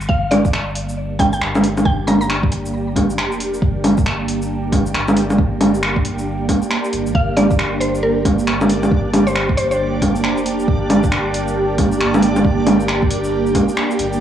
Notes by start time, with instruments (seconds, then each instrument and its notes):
0.01 shaker
0.09 sub bass G1, ambient pad A#3, synth pluck F5, kick
0.25 ambient pad D4
0.31 synth pluck D5, open hi-hat, low bongo
0.45 kick, shaker
0.53 finger snap
0.62 ambient pad G4
0.75 open hi-hat
0.89 shaker
1.19 sub bass G1, synth pluck G5, kick, open hi-hat, low bongo
1.33 synth pluck G5, shaker
1.41 sub bass G1, finger snap
1.55 low bongo, shaker
1.64 open hi-hat
1.77 low bongo, shaker
1.85 sub bass G1, synth pluck G5, kick
2.07 synth pluck A#5, open hi-hat, low bongo
2.21 synth pluck A#5, shaker
2.30 finger snap
2.43 kick
2.52 open hi-hat
2.66 shaker
2.96 kick, open hi-hat, low bongo
3.10 shaker
3.17 sub bass F1, finger snap
3.32 shaker
3.40 open hi-hat
3.54 shaker
3.62 sub bass G1, kick
3.84 open hi-hat, low bongo
3.98 kick, shaker
4.06 finger snap
4.28 open hi-hat
4.42 shaker
4.72 sub bass G1, kick, open hi-hat, low bongo
4.86 shaker
4.94 sub bass G1, finger snap
5.08 low bongo, shaker
5.16 open hi-hat
5.30 low bongo, shaker
5.38 sub bass G1, kick
5.61 open hi-hat, low bongo
5.74 shaker
5.83 finger snap
5.96 kick
6.05 open hi-hat
6.18 shaker
6.49 kick, open hi-hat, low bongo
6.62 shaker
6.71 finger snap
6.84 shaker
6.93 sub bass G1, open hi-hat
7.06 sub bass A#1, shaker
7.14 sub bass G1, synth texture D4 D5, synth pluck F5, kick
7.37 synth pluck D5, open hi-hat, low bongo
7.51 kick, shaker
7.59 finger snap
7.81 synth pluck C5, open hi-hat
7.95 shaker
8.03 synth pluck A#4
8.25 sub bass G1, kick, open hi-hat, low bongo
8.39 shaker
8.47 sub bass G1, finger snap
8.61 low bongo, shaker
8.69 open hi-hat
8.83 low bongo, shaker
8.91 sub bass G1, kick
9.14 open hi-hat, low bongo
9.27 synth pluck C5, shaker
9.36 finger snap
9.49 kick
9.57 synth pluck C5, open hi-hat
9.71 synth pluck C5, shaker
10.02 kick, open hi-hat, low bongo
10.16 shaker
10.23 sub bass F1, finger snap
10.37 shaker
10.46 open hi-hat
10.59 shaker
10.68 sub bass G1, kick
10.90 open hi-hat, low bongo
11.04 kick, shaker
11.12 finger snap
11.34 open hi-hat
11.48 shaker
11.78 sub bass G1, kick, open hi-hat, low bongo
11.92 shaker
12.00 sub bass G1, finger snap
12.14 low bongo, shaker
12.22 open hi-hat
12.36 low bongo, shaker
12.44 sub bass G1, kick
12.67 open hi-hat, low bongo
12.80 shaker
12.88 finger snap
13.02 kick
13.11 open hi-hat
13.24 shaker
13.47 shaker
13.55 kick, open hi-hat, low bongo
13.69 shaker
13.77 finger snap
13.91 shaker
13.99 sub bass G1, open hi-hat
14.13 shaker